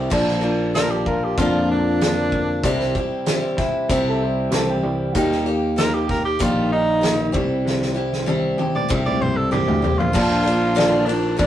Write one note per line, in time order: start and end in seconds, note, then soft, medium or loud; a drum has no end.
0.00 0.10 C3 medium
0.00 0.11 G3 medium
0.00 0.11 C4 medium
0.00 0.10 E4 medium
0.00 0.11 E4 medium
0.00 0.12 G4 medium
0.10 1.34 A#1 medium
0.10 0.42 A#2 medium
0.10 1.69 A#2 medium
0.10 0.43 D3 medium
0.10 0.42 F3 medium
0.10 0.42 A#3 loud
0.10 0.41 D4 medium
0.10 0.40 A#4 loud
0.10 kick loud
0.10 crash loud
0.28 snare soft
0.41 0.73 F3 soft
0.41 0.74 A#3 medium
0.41 1.68 A#3 medium
0.41 0.74 D4 medium
0.41 0.74 A#4 medium
0.74 1.37 F3 medium
0.74 1.38 A#3 medium
0.74 1.36 D4 medium
0.74 1.38 D4 medium
0.74 0.92 A#4 loud
0.74 1.39 A#4 medium
0.74 snare loud
0.74 closed hi-hat medium
0.91 1.05 G4 medium
1.06 2.64 F4 medium
1.06 1.26 A#4 medium
1.06 kick medium
1.24 1.37 G4 medium
1.37 2.60 F2 medium
1.37 2.01 A#2 medium
1.37 2.01 D3 medium
1.37 2.01 F3 medium
1.37 2.01 A#3 medium
1.37 2.63 D4 medium
1.37 2.02 D4 medium
1.37 1.68 F4 loud
1.37 2.02 A#4 medium
1.37 kick loud
1.37 closed hi-hat medium
1.69 2.31 A#3 medium
1.69 2.92 D4 loud
2.01 2.64 D3 medium
2.01 2.64 F3 medium
2.01 2.65 A#3 medium
2.01 2.65 D4 medium
2.01 2.65 A#4 medium
2.01 snare loud
2.01 closed hi-hat medium
2.32 2.64 A#3 medium
2.32 kick medium
2.64 2.92 C2 loud
2.64 4.21 C3 medium
2.64 2.95 C3 medium
2.64 2.95 G3 medium
2.64 2.96 C4 medium
2.64 2.96 E4 loud
2.64 2.94 G4 loud
2.64 2.79 D5 medium
2.64 kick loud
2.64 closed hi-hat medium
2.77 2.80 B4 medium
2.77 snare soft
2.81 4.02 C5 medium
2.95 4.20 G3 medium
2.95 3.26 C4 medium
2.95 3.27 E4 medium
2.95 3.27 G4 medium
2.95 kick medium
3.26 3.58 G3 medium
3.26 3.87 C4 medium
3.26 3.58 C4 medium
3.26 3.58 E4 medium
3.26 3.57 G4 medium
3.26 snare loud
3.26 closed hi-hat medium
3.57 3.89 C4 soft
3.57 5.14 E4 medium
3.57 3.90 E4 soft
3.57 3.89 G4 soft
3.57 kick medium
3.57 snare soft
3.89 4.48 C2 loud
3.89 4.52 C3 medium
3.89 4.51 G3 loud
3.89 5.14 C4 medium
3.89 4.52 C4 loud
3.89 4.52 E4 loud
3.89 4.54 G4 loud
3.89 kick loud
3.89 closed hi-hat medium
4.08 4.21 A4 medium
4.20 4.83 G3 medium
4.20 4.52 C5 medium
4.51 4.80 C2 loud
4.51 5.14 E3 medium
4.51 5.15 G3 medium
4.51 5.15 C4 medium
4.51 5.16 E4 medium
4.51 5.16 G4 medium
4.51 4.68 A4 medium
4.51 snare loud
4.51 closed hi-hat medium
4.70 5.15 G4 medium
4.83 5.12 C2 medium
4.83 5.45 G3 medium
5.12 6.36 D#2 loud
5.12 6.71 D#3 medium
5.12 5.46 D#3 loud
5.12 5.46 G3 medium
5.12 5.47 A#3 medium
5.12 5.46 D#4 loud
5.12 5.16 F#4 medium
5.12 5.45 G4 medium
5.12 kick loud
5.12 closed hi-hat medium
5.17 5.62 G4 loud
5.32 snare soft
5.45 6.69 A#3 medium
5.45 5.76 A#3 medium
5.45 5.77 D#4 medium
5.45 5.77 G4 medium
5.76 6.39 G3 medium
5.76 6.39 A#3 medium
5.76 6.39 D#4 medium
5.76 6.40 G4 medium
5.76 5.95 A#4 loud
5.76 snare loud
5.76 closed hi-hat medium
5.94 6.08 G4 medium
6.08 7.33 G4 medium
6.08 6.24 A#4 medium
6.08 kick medium
6.08 snare soft
6.25 6.45 G4 loud
6.39 7.30 A#1 medium
6.39 7.02 D#3 medium
6.39 7.00 G3 medium
6.39 7.01 A#3 medium
6.39 7.34 D#4 medium
6.39 7.02 D#4 medium
6.39 7.03 G4 medium
6.39 kick loud
6.39 closed hi-hat medium
6.43 6.72 F4 medium
6.71 7.34 A#3 medium
6.71 7.33 D#4 loud
7.01 7.34 D#3 medium
7.01 7.33 G3 soft
7.01 7.33 A#3 medium
7.01 7.33 D#4 medium
7.01 7.31 G4 medium
7.01 snare loud
7.01 closed hi-hat medium
7.32 8.55 C2 loud
7.32 7.64 C3 medium
7.32 7.96 C3 medium
7.32 7.96 G3 medium
7.32 7.96 C4 medium
7.32 7.95 E4 medium
7.32 7.93 G4 medium
7.32 kick loud
7.66 9.21 C3 medium
7.66 snare medium
7.82 snare medium
7.94 9.20 G3 medium
7.94 8.26 C4 medium
7.94 8.27 E4 medium
7.94 8.27 G4 medium
8.13 snare medium
8.26 8.58 G3 medium
8.26 8.59 C4 medium
8.26 8.88 C4 medium
8.26 8.58 E4 medium
8.26 8.57 G4 medium
8.26 high tom medium
8.58 8.88 C4 soft
8.58 8.89 E4 soft
8.58 8.90 G4 soft
8.58 10.14 G4 medium
8.58 high tom medium
8.75 8.90 D5 loud
8.75 mid tom medium
8.89 9.49 C2 loud
8.89 9.52 C3 medium
8.89 9.50 G3 medium
8.89 10.14 C4 medium
8.89 9.51 C4 loud
8.89 9.51 E4 loud
8.89 9.52 G4 medium
8.89 kick loud
9.06 9.23 D5 medium
9.06 mid tom medium
9.21 9.82 G3 medium
9.21 9.38 C5 medium
9.21 mid tom medium
9.37 9.51 A4 medium
9.51 9.66 C2 medium
9.51 10.15 E3 medium
9.51 9.83 G3 medium
9.51 9.83 C4 medium
9.51 9.82 E4 medium
9.51 10.00 G4 medium
9.51 9.81 G4 medium
9.51 mid tom medium
9.68 9.82 D2 medium
9.68 floor tom medium
9.82 9.97 C2 medium
9.82 10.14 G3 medium
9.82 10.14 C4 soft
9.82 10.14 E4 soft
9.82 10.14 G4 medium
9.82 floor tom loud
9.99 10.13 A#1 medium
9.99 11.07 F4 loud
9.99 floor tom medium
10.13 11.35 A#1 loud
10.13 10.45 A#2 loud
10.13 10.45 D3 medium
10.13 10.45 F3 medium
10.13 10.44 A#3 medium
10.13 10.43 D4 medium
10.13 10.42 A#4 loud
10.13 kick loud
10.13 crash loud
10.43 10.75 F3 soft
10.43 10.76 A#3 medium
10.43 10.75 D4 medium
10.43 10.76 A#4 medium
10.47 ride medium
10.75 11.07 A#2 medium
10.75 11.07 D3 medium
10.75 11.07 F3 medium
10.75 11.07 A#3 medium
10.75 11.05 D4 loud
10.75 11.05 A#4 loud
10.75 snare loud
10.75 ride loud
11.06 11.35 F3 soft
11.06 11.36 A#3 soft
11.06 11.38 D4 medium
11.06 11.37 D4 soft
11.06 11.38 A#4 soft
11.06 ride medium
11.37 11.47 A#1 loud
11.37 11.47 F3 medium
11.37 11.47 A#3 medium
11.37 11.47 D4 medium
11.37 11.47 D4 loud
11.37 11.47 A#4 medium
11.37 kick loud
11.37 ride loud